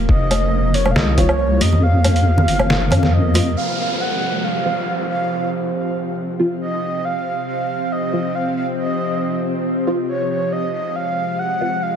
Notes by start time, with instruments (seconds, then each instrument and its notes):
Already playing: synth drone C3 F3 A#3
0.09 wobble bass F1, soft synth lead D#5, kick
0.31 closed hi-hat, high conga, low woodblock
0.74 soft synth lead C#5, open hi-hat
0.85 high conga, low woodblock
0.91 soft synth lead F5
0.96 wobble bass C2, soft synth lead D#5, snare
1.18 synth stab F3 C4 F4, soft synth lead C#5, kick, closed hi-hat, low conga
1.29 low woodblock
1.61 wobble bass F2, soft synth lead D#5, open hi-hat, high conga
1.73 low conga
1.83 soft synth lead F5
2.04 closed hi-hat, high conga, low woodblock
2.16 closed hi-hat
2.38 low conga
2.48 wobble bass F#1, open hi-hat
2.59 high conga, low woodblock
2.70 snare
2.91 wobble bass F2, closed hi-hat, low conga, low woodblock
3.03 soft synth lead F5, snare, low conga
3.13 soft synth lead D#5
3.34 synth stab F3 C4 F4, open hi-hat, high conga
3.57 synth drone C3 F3 C4, soft synth lead F5, downlifter
4.01 soft synth lead F#5
4.44 soft synth lead F5
4.65 synth stab F3 C4 F4
5.10 soft synth lead F5
6.39 synth stab F3 C4 F4
6.61 soft synth lead D#5
7.05 soft synth lead F5
7.48 soft synth lead F5
7.92 soft synth lead D#5
8.13 synth stab F3 C4 F4
8.35 soft synth lead F5
8.57 soft synth lead F5
8.78 soft synth lead D#5
9.87 synth stab F3 C4 F4
10.09 soft synth lead C#5
10.31 soft synth lead C#5
10.52 synth drone G#3, soft synth lead D#5
10.74 soft synth lead D#5
10.96 soft synth lead F5
11.39 soft synth lead F#5
11.61 synth stab F3 C4 F4
11.82 soft synth lead F5